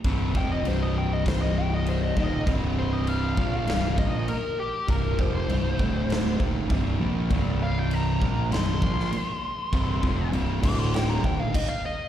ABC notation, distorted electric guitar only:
X:1
M:4/4
L:1/8
Q:1/4=99
K:Cm
V:1 name="Distorted electric guitar" clef=bass
[C,,G,,C,] [F,,C,F,] [C,,G,,C,]4- [C,,G,,C,] [E,,B,,E,] | [C,,G,,C,]3 [B,,F,B,] [C,,G,,C,] [B,,F,B,] z2 | [C,,G,,C,] [F,,C,F,] [C,,G,,C,] [D,,=A,,D,]2 [E,,B,,E,] [C,,G,,C,] [B,,F,B,] | [C,,G,,C,]3 [B,,F,B,] [C,,G,,C,] [B,,F,B,] z2 |
[C,,G,,C,] [F,,C,F,] [C,,G,,C,] [D,,=A,,D,]2 [E,,B,,E,] z2 |]